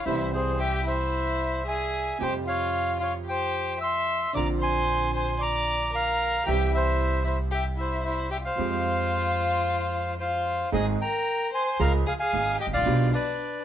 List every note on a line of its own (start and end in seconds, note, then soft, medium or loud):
0.05 2.10 C2 medium
0.05 2.11 C2 medium
0.05 2.11 C3 medium
0.05 2.11 E3 soft
0.05 0.31 E4 medium
0.05 0.31 C5 medium
0.05 0.30 E5 medium
0.10 2.12 E4 medium
0.33 0.58 C4 medium
0.33 0.59 G#4 medium
0.33 0.61 C5 medium
0.60 0.85 G4 medium
0.60 0.85 E5 medium
0.60 0.85 G5 medium
0.86 1.63 E4 medium
0.86 1.64 C5 medium
0.86 1.67 E5 medium
1.66 2.17 G#4 medium
1.66 2.18 E5 medium
1.66 2.23 G#5 medium
2.19 4.24 F2 medium
2.19 4.25 F2 medium
2.19 4.23 C3 soft
2.19 4.25 F3 medium
2.19 4.25 G3 soft
2.19 2.33 G4 medium
2.19 2.33 G5 medium
2.23 4.26 F4 soft
2.23 2.34 C5 medium
2.45 2.96 F4 medium
2.45 2.98 C#5 medium
2.45 2.97 F5 medium
3.00 3.12 F4 medium
3.00 3.14 C#5 medium
3.00 3.13 F5 medium
3.27 3.77 G4 medium
3.27 3.79 C5 medium
3.27 3.78 G5 medium
3.80 4.31 E5 medium
3.80 4.32 C6 medium
3.80 4.31 E6 medium
4.33 6.37 A#1 medium
4.33 6.38 A#1 medium
4.33 6.37 A#2 medium
4.33 6.36 D3 soft
4.33 6.36 A#3 soft
4.33 6.37 C4 soft
4.33 4.46 D5 medium
4.33 4.48 A#5 medium
4.33 4.47 D6 medium
4.37 6.38 F4 medium
4.60 5.10 C5 medium
4.60 5.12 G#5 medium
4.60 5.11 C6 medium
5.14 5.39 C5 medium
5.14 5.40 G#5 medium
5.14 5.42 C6 medium
5.40 5.90 D5 medium
5.40 5.91 A#5 medium
5.40 5.96 D6 medium
5.93 6.43 A#4 medium
5.93 6.44 F5 medium
5.93 6.49 A#5 medium
6.46 8.47 C2 medium
6.46 8.48 C3 medium
6.46 8.46 E3 medium
6.46 8.47 G3 soft
6.46 8.48 C4 soft
6.46 6.71 G4 medium
6.46 6.72 E5 medium
6.46 6.71 G5 medium
6.51 8.49 G4 medium
6.72 7.21 E4 medium
6.72 7.23 E5 medium
6.76 7.24 C5 medium
7.24 7.36 E4 medium
7.24 7.39 C5 medium
7.24 7.37 E5 medium
7.51 7.63 G4 medium
7.51 7.66 E5 medium
7.51 7.64 G5 medium
7.77 8.02 E4 medium
7.77 8.04 C5 medium
7.77 8.03 E5 medium
8.04 8.29 E4 medium
8.04 8.30 C5 medium
8.04 8.29 E5 medium
8.30 8.36 G4 medium
8.30 8.38 E5 medium
8.30 8.37 G5 medium
8.43 10.13 F4 medium
8.43 10.15 C5 medium
8.43 10.14 F5 medium
8.55 10.62 F2 medium
8.55 8.57 F3 soft
8.55 10.61 F3 medium
8.55 10.61 G#3 soft
8.55 10.62 C4 soft
8.60 10.62 G4 medium
10.19 10.69 F4 medium
10.19 10.69 C5 medium
10.19 10.70 F5 medium
10.72 10.95 G#1 medium
10.72 10.95 G#2 medium
10.72 10.95 D#3 medium
10.72 10.95 G#3 medium
10.72 10.95 C4 medium
10.72 10.95 G#4 medium
10.72 10.85 G#4 medium
10.72 10.85 D#5 medium
10.72 10.86 G#5 medium
11.01 11.50 A#4 medium
11.01 11.50 G5 medium
11.01 11.50 A#5 medium
11.53 11.78 C5 medium
11.53 11.78 G#5 medium
11.53 11.81 C6 medium
11.79 12.02 C#2 medium
11.79 12.02 C#3 medium
11.79 12.02 F3 medium
11.79 12.02 G#3 medium
11.79 12.02 C#4 medium
11.79 12.02 G#4 medium
11.79 11.93 A#4 medium
11.79 11.93 F5 medium
11.79 11.92 A#5 medium
12.06 12.12 G#4 medium
12.06 12.14 F5 medium
12.06 12.13 G#5 medium
12.20 12.57 G#4 medium
12.20 12.57 F5 medium
12.20 12.57 G#5 medium
12.33 12.55 G#1 medium
12.33 12.55 G#1 soft
12.33 12.55 G#2 medium
12.60 12.66 G4 medium
12.60 12.67 D#5 medium
12.60 12.67 G5 medium
12.67 12.73 G#1 soft
12.73 12.79 A1 medium
12.73 12.80 A1 medium
12.73 13.10 F4 medium
12.73 13.11 D5 medium
12.73 13.14 F5 medium
12.79 12.86 A#1 medium
12.86 13.08 B1 medium
12.86 13.09 B1 medium
12.86 13.08 B2 medium
12.86 13.08 F3 medium
12.86 13.08 B3 medium
12.86 13.09 D4 medium
12.86 13.09 G4 medium
13.13 13.62 D4 medium
13.13 13.63 B4 medium
13.13 13.63 D5 medium